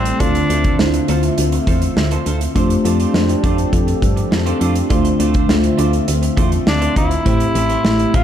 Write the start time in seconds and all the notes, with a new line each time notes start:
Already playing: A1 G3 A3 C4 E4 G4 C5
0.05 muted clean electric guitar stroke, closed hi-hat
0.19 D2 D3 A3 C4 D4 F4 A4 C5 E5, kick, closed hi-hat
0.35 closed hi-hat
0.49 D2 C4 F4 A4 C5, closed hi-hat
0.64 C4 F4 A4 C5, kick, closed hi-hat
0.79 D2 A3 D4 E4 C5, snare
0.86 F4
0.94 muted clean electric guitar stroke, closed hi-hat
1.08 D2 C4 F4 A4 C5, closed hi-hat
1.23 muted clean electric guitar stroke, closed hi-hat
1.38 D2, closed hi-hat
1.52 muted clean electric guitar stroke, closed hi-hat
1.67 E2 C4 F4 A4 C5, kick, closed hi-hat
1.82 muted clean electric guitar stroke, closed hi-hat
1.97 D2, muted clean electric guitar stroke, snare
2.11 C4 F4 A4 C5, closed hi-hat
2.26 D2 C4 F4 A4 C5, closed hi-hat
2.41 muted clean electric guitar stroke, closed hi-hat
2.55 F2 F3 A3 C4 D4 F4 G4 A4 C5, kick, closed hi-hat
2.70 closed hi-hat
2.84 F2 A3 D4 F4 C5, closed hi-hat
2.99 A3 D4 F4 C5, closed hi-hat
3.14 F2 A3 D4 F4 C5, snare
3.29 muted clean electric guitar stroke, closed hi-hat
3.43 F2 A3 D4 F4 C5, kick, closed hi-hat
3.58 muted clean electric guitar stroke, closed hi-hat
3.73 F2, muted clean electric guitar stroke, kick, closed hi-hat
3.87 muted clean electric guitar stroke, closed hi-hat
4.02 G2, kick, closed hi-hat
4.17 muted clean electric guitar stroke, closed hi-hat
4.31 F2, muted clean electric guitar stroke, snare
4.46 A3 D4 F4 C5, closed hi-hat
4.60 F2 A3 D4 F4 C5, closed hi-hat
4.76 muted clean electric guitar stroke, closed hi-hat
4.90 D2 D3 A3 D4 F4 C5 E5, kick, closed hi-hat
5.05 closed hi-hat
5.19 D2 A3 D4 F4 C5, closed hi-hat
5.34 A3 D4 F4 C5, kick, closed hi-hat
5.48 D2 A3 D4 F4 C5, snare
5.63 muted clean electric guitar stroke, closed hi-hat
5.78 D2 A3 D4 F4 C5, closed hi-hat
5.92 muted clean electric guitar stroke, closed hi-hat
6.08 D2, closed hi-hat
6.22 muted clean electric guitar stroke, closed hi-hat
6.37 E2 A3 D4 F4 C5, kick, closed hi-hat
6.52 muted clean electric guitar stroke, closed hi-hat
6.67 D2 D4, muted clean electric guitar stroke, snare
6.81 A3 D4 F4 C5, closed hi-hat
6.96 D2 A3 D4 E4 F4 C5, kick, closed hi-hat
7.11 muted clean electric guitar stroke, closed hi-hat
7.25 A1 A2 A3 E4 G4 C5, kick, closed hi-hat
7.40 closed hi-hat
7.55 A1 A3 E4 G4 C5, closed hi-hat
7.70 A3 E4 G4 C5, closed hi-hat
7.85 A1 A3 E4 G4 C5, snare
7.99 muted clean electric guitar stroke, closed hi-hat
8.14 A1 A3 E4 F4 G4 C5, kick, closed hi-hat